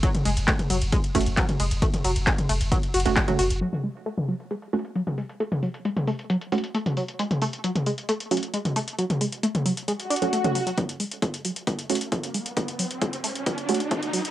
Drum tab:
CC |--------------------------------|--------------------------------|x-------------------------------|--------------------------------|
RD |x---x---x---x---x---x---x---x---|x---x---x---x---x---x---x---x---|--------------------------------|--------------------------------|
HH |x-x-o-x-x-x-o-x-x-x-oxx-x-x-o-x-|x-x-o-x-x-x-o-x-x-x-oxx-x-x-o-x-|x-x-o-x-x-x-o-x-x-x-oxx-x-x-o-x-|x-x-o-x-x-x-o-x-x-x-oxx-x-x-o-x-|
CP |--------x---------------x-------|--------x---------------x-------|--------------------------------|--------------------------------|
T2 |--o-------o---------------o-----|--o-------o---------------o-----|--o-------o---------------o-----|--o-------o---------------o-----|
BD |o-------o-------o---o---o-------|o-------o-------o-------o-------|--------------------------------|--------------------------------|

CC |--------------------------------|--------------------------------|--------------------------------|--------------------------------|
RD |--------------------------------|--------------------------------|--------------------------------|--------------------------------|
HH |x-x-o-x-x-x-o-x-x-x-oxx-x-x-o-x-|x-x-o-x-x-x-o-x-x-x-oxx-x-x-o-x-|x-x-o-x-x-x-o-x-x-x-oxx-x-x-o-x-|x-x-o-x-x-x-o-x-x-x-oxx-x-x-o-x-|
CP |--------------------------------|--------------------------------|--------------------------------|--------------------------------|
T2 |--o-------o---------------o-----|--o-------o---------------o-----|--------------------------------|--------------------------------|
BD |--------------------------------|--------------------------------|o-------o-------o-------o-------|o-------o-------o-------o-------|